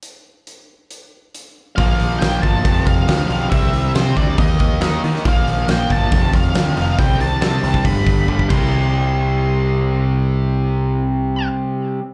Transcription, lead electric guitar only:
\new Staff \with { instrumentName = "Lead electric guitar" } { \time 4/4 \key bes \lydian \tempo 4 = 138 r1 | f''4 g''8 a''4 f''4 f''8 | e''4 c''8 d''8 ees''4. r8 | f''4 g''8 a''4 f''4 f''8 |
g''8 a''8 a''4 b''4. c'''8~ | c'''1~ | c'''1 | }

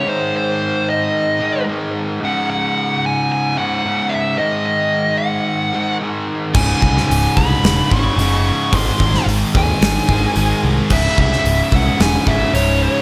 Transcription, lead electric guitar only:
\new Staff \with { instrumentName = "Lead electric guitar" } { \time 4/4 \key cis \minor \tempo 4 = 110 bis'8 bis'4 dis''4. r4 | fis''8 fis''4 gis''8 gis''8 fis''4 e''8 | dis''8 dis''4 fis''4. r4 | gis''8 gis''8 gis''8 b''4 cis'''4 cis'''8 |
bis''4 r8 gis''2 r8 | e''8 e''4 fis''8 gis''8 e''8 cis''8 cis''8 | }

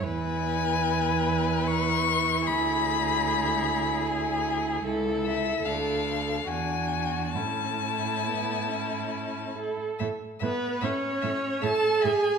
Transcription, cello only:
\new Staff \with { instrumentName = "Cello" } { \clef bass \time 3/4 \key a \major \tempo 4 = 74 e,2. | d,2. | cis,4 d,4 e,4 | a,2~ a,8. r16 |
a,8 a,8 a,8 a,8 a,8 a,8 | }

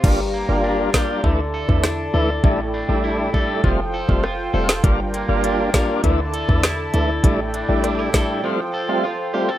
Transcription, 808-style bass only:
\new Staff \with { instrumentName = "808-style bass" } { \clef bass \time 4/4 \key d \minor \tempo 4 = 100 g,,8. g,,8. r8 d,8. e,8. d,8 | a,,8. a,,8. r8 f,,8. f,,8. e,,8 | g,,8. g,,8. r8 d,8. e,8. d,8 | a,,8. a,,8. r2 r8 | }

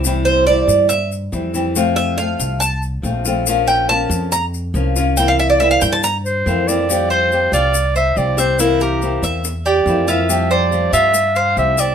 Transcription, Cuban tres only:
\new Staff \with { instrumentName = "Cuban tres" } { \time 4/4 \key f \major \tempo 4 = 140 r8 c''8 d''4 e''8 r4. | r8 e''8 f''4 a''8 r4. | r8 g''8 a''4 bes''8 r4. | g''16 f''16 e''16 d''16 e''16 f''16 g''16 a''16 bes''8 r4. |
r8 c''4 f'4 c''4 e''8 | e'8 bes'4 e''4 g'4 f'8~ | f'8 c''4 f'4 c''4 e''8 | }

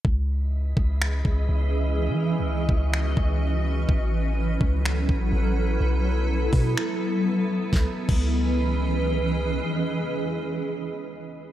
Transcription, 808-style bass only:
\new Staff \with { instrumentName = "808-style bass" } { \clef bass \time 4/4 \key cis \minor \tempo 4 = 125 cis,4. cis,4 cis,8 cis,4~ | cis,16 e8~ e32 cis,8~ cis,32 cis,4 cis,4. | a,,4. cis,4 a,,8 a,,4 | b,,4. b,8 r2 |
cis,16 r8 cis,2.~ cis,16 | r1 | }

